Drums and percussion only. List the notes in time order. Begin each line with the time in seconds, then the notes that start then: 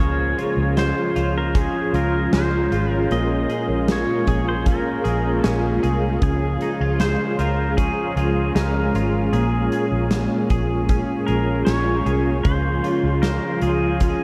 0.39 closed hi-hat
0.77 snare, closed hi-hat
1.16 closed hi-hat
1.55 kick, closed hi-hat
1.94 closed hi-hat
2.33 snare, closed hi-hat
2.72 closed hi-hat
3.11 closed hi-hat
3.50 closed hi-hat
3.88 snare, closed hi-hat
4.27 kick, closed hi-hat
4.66 kick, closed hi-hat
5.05 closed hi-hat
5.44 snare, closed hi-hat
5.84 closed hi-hat
6.22 kick, closed hi-hat
6.61 closed hi-hat
7.00 snare, closed hi-hat
7.39 closed hi-hat
7.78 kick, closed hi-hat
8.17 closed hi-hat
8.56 snare, closed hi-hat
8.95 closed hi-hat
9.33 closed hi-hat
9.72 closed hi-hat
10.11 snare, closed hi-hat
10.50 kick, closed hi-hat
10.89 kick, closed hi-hat
11.28 closed hi-hat
11.67 snare, closed hi-hat
12.06 closed hi-hat
12.45 kick, closed hi-hat
12.84 closed hi-hat
13.23 snare, closed hi-hat
13.62 closed hi-hat
14.00 kick, closed hi-hat